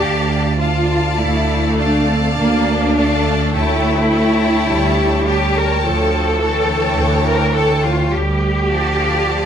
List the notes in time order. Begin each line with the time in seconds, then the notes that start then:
Already playing: G4 D5 F5 A5
0.00 D2
0.60 F4 D5 F5 A5
1.18 D2 A3 E4
1.78 D4 D5 F5 A5
2.07 C4
2.37 D2 A#3 D4
2.95 A3 D5 F5 A5
3.53 D2 E4 C#5 G5 A5
4.09 C#5 G5 A5
4.68 D2 G3
5.27 G4 C#5 G5 A5
5.56 A#4
5.83 D2 F3 A4
6.39 E3 C#5 G5 A5
6.97 D2
7.25 A#4
7.53 A4 C#5 G5 A5
7.83 F4
8.10 D2 G3 G4
8.69 F3 D5 F5 A5
9.25 D2